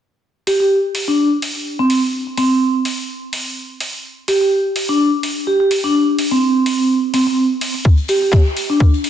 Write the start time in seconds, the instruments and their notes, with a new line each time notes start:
0.47 vibraphone G4, open hi-hat
0.60 vibraphone G4
0.95 open hi-hat
1.08 vibraphone D4
1.42 open hi-hat
1.79 vibraphone C4
1.90 open hi-hat
2.37 vibraphone C4, open hi-hat
2.85 open hi-hat
3.33 open hi-hat
3.80 open hi-hat
4.28 vibraphone G4, open hi-hat
4.41 vibraphone G4
4.76 open hi-hat
4.89 vibraphone D4
5.23 open hi-hat
5.47 vibraphone G4
5.60 vibraphone G4
5.71 open hi-hat
5.84 vibraphone D4
5.95 vibraphone D4
6.19 open hi-hat
6.32 vibraphone C4
6.66 open hi-hat
7.14 vibraphone C4, open hi-hat
7.27 vibraphone C4
7.61 open hi-hat
7.85 kick, closed hi-hat
7.97 closed hi-hat
8.08 vibraphone G4, closed hi-hat, open hi-hat
8.22 vibraphone G4
8.32 kick, snare, closed hi-hat
8.57 closed hi-hat, open hi-hat
8.70 vibraphone D4
8.80 kick, closed hi-hat
8.94 closed hi-hat
9.04 closed hi-hat, open hi-hat